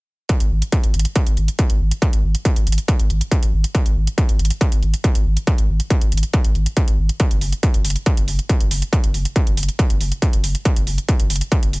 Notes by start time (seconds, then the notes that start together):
0.29 kick, closed hi-hat
0.40 G#1, closed hi-hat
0.51 G#1
0.62 closed hi-hat
0.72 kick, closed hi-hat
0.83 G#1, closed hi-hat
0.94 G#1, closed hi-hat
0.99 closed hi-hat
1.05 closed hi-hat
1.16 kick, closed hi-hat
1.26 G#1, closed hi-hat
1.37 G#1, closed hi-hat
1.48 closed hi-hat
1.59 kick, closed hi-hat
1.70 G#1, closed hi-hat
1.80 G#1
1.91 closed hi-hat
2.02 kick, closed hi-hat
2.13 G#1, closed hi-hat
2.24 G#1
2.35 closed hi-hat
2.45 kick, closed hi-hat
2.56 G#1, closed hi-hat
2.67 G#1, closed hi-hat
2.72 closed hi-hat
2.78 closed hi-hat
2.88 kick, closed hi-hat
2.99 G#1, closed hi-hat
3.10 G#1, closed hi-hat
3.21 closed hi-hat
3.31 kick, closed hi-hat
3.42 G#1, closed hi-hat
3.53 G#1
3.64 closed hi-hat
3.75 kick, closed hi-hat
3.86 G#1, closed hi-hat
3.96 G#1
4.07 closed hi-hat
4.18 kick, closed hi-hat
4.29 G#1, closed hi-hat
4.39 G#1, closed hi-hat
4.45 closed hi-hat
4.50 closed hi-hat
4.61 kick, closed hi-hat
4.72 G#1, closed hi-hat
4.82 G#1, closed hi-hat
4.94 closed hi-hat
5.04 kick, closed hi-hat
5.15 G#1, closed hi-hat
5.26 G#1
5.37 closed hi-hat
5.47 kick, closed hi-hat
5.58 G#1, closed hi-hat
5.69 G#1
5.80 closed hi-hat
5.90 kick, closed hi-hat
6.01 G#1, closed hi-hat
6.12 G#1, closed hi-hat
6.17 closed hi-hat
6.23 closed hi-hat
6.33 kick, closed hi-hat
6.44 G#1, closed hi-hat
6.55 G#1, closed hi-hat
6.66 closed hi-hat
6.77 kick, closed hi-hat
6.88 G#1, closed hi-hat
6.98 G#1
7.09 closed hi-hat
7.20 kick, closed hi-hat
7.31 F#1, closed hi-hat
7.41 F#1, open hi-hat
7.52 closed hi-hat
7.63 kick, closed hi-hat
7.74 F#1, closed hi-hat
7.85 F#1, open hi-hat
7.90 closed hi-hat
7.96 closed hi-hat
8.06 kick, closed hi-hat
8.17 F#1, closed hi-hat
8.28 F#1, open hi-hat
8.39 closed hi-hat
8.49 kick, closed hi-hat
8.60 F#1, closed hi-hat
8.71 F#1, open hi-hat
8.82 closed hi-hat
8.93 kick, closed hi-hat
9.04 F#1, closed hi-hat
9.14 F#1, open hi-hat
9.25 closed hi-hat
9.36 kick, closed hi-hat
9.47 F#1, closed hi-hat
9.57 F#1, open hi-hat
9.63 closed hi-hat
9.68 closed hi-hat
9.79 kick, closed hi-hat
9.90 F#1, closed hi-hat
10.00 F#1, open hi-hat
10.12 closed hi-hat
10.22 kick, closed hi-hat
10.33 F#1, closed hi-hat
10.44 F#1, open hi-hat
10.55 closed hi-hat
10.65 kick, closed hi-hat
10.76 F#1, closed hi-hat
10.87 F#1, open hi-hat
10.98 closed hi-hat
11.09 kick, closed hi-hat
11.20 F#1, closed hi-hat
11.30 F#1, open hi-hat
11.36 closed hi-hat
11.41 closed hi-hat
11.52 kick, closed hi-hat
11.63 F#1, closed hi-hat
11.73 F#1, open hi-hat